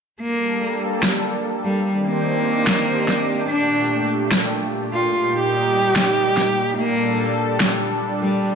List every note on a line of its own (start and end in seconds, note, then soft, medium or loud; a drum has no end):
0.21 1.83 G3 medium
0.21 0.74 A#3 medium
0.21 1.83 A#3 medium
0.21 5.10 D4 medium
0.21 1.83 A4 medium
1.03 snare loud
1.64 1.91 G3 medium
1.85 3.48 D#3 medium
1.85 3.48 C4 medium
1.85 5.11 G4 medium
2.06 3.42 A#3 loud
2.67 snare loud
3.08 snare soft
3.49 8.39 A#2 medium
3.49 5.12 A3 medium
3.49 4.03 D4 loud
4.32 snare loud
4.93 5.19 F4 medium
5.14 6.77 G3 medium
5.14 6.77 D#4 medium
5.14 6.77 G4 medium
5.34 6.70 G4 loud
5.96 snare loud
6.37 snare soft
6.78 8.41 G3 medium
6.78 7.32 A#3 loud
6.78 8.55 D4 medium
6.78 8.41 A4 medium
7.60 snare loud
8.22 8.48 G3 medium
8.43 8.55 C3 medium
8.43 8.55 D#3 medium
8.43 8.55 G4 medium